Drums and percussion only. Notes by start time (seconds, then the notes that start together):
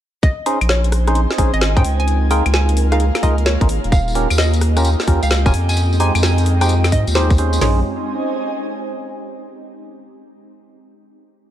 0.23 kick, closed hi-hat
0.46 open hi-hat
0.61 closed hi-hat, claves
0.69 snare
0.84 closed hi-hat
0.92 cross-stick, open hi-hat
1.07 cross-stick, closed hi-hat
1.15 closed hi-hat
1.31 snare
1.38 kick, open hi-hat
1.54 closed hi-hat
1.61 snare
1.77 kick, closed hi-hat
1.85 open hi-hat
2.00 closed hi-hat
2.08 closed hi-hat
2.31 open hi-hat
2.46 closed hi-hat, claves
2.54 snare
2.69 closed hi-hat
2.77 open hi-hat
2.92 cross-stick, closed hi-hat
3.00 closed hi-hat
3.15 snare, open hi-hat, claves
3.23 kick, open hi-hat
3.38 closed hi-hat
3.46 snare
3.61 kick, closed hi-hat
3.69 open hi-hat
3.84 closed hi-hat
3.92 kick, closed hi-hat, tambourine
4.08 tambourine
4.15 open hi-hat
4.30 closed hi-hat, tambourine, claves
4.38 snare, tambourine
4.54 closed hi-hat, tambourine
4.61 cross-stick, open hi-hat
4.77 cross-stick, closed hi-hat, tambourine
4.85 closed hi-hat, tambourine
5.00 snare, tambourine
5.08 kick, open hi-hat
5.23 closed hi-hat, tambourine
5.31 snare, tambourine
5.46 kick, closed hi-hat, tambourine
5.54 open hi-hat
5.69 closed hi-hat, tambourine
5.76 closed hi-hat, tambourine
5.93 tambourine
6.00 open hi-hat
6.15 closed hi-hat, tambourine, claves
6.23 snare, tambourine
6.38 closed hi-hat, tambourine
6.46 open hi-hat
6.61 cross-stick, closed hi-hat, tambourine
6.69 closed hi-hat, tambourine
6.84 snare, open hi-hat, tambourine, claves
6.92 kick, open hi-hat
7.07 closed hi-hat, tambourine
7.15 snare, tambourine
7.30 kick, closed hi-hat, tambourine
7.38 open hi-hat
7.53 closed hi-hat, tambourine
7.61 snare, floor tom, open hi-hat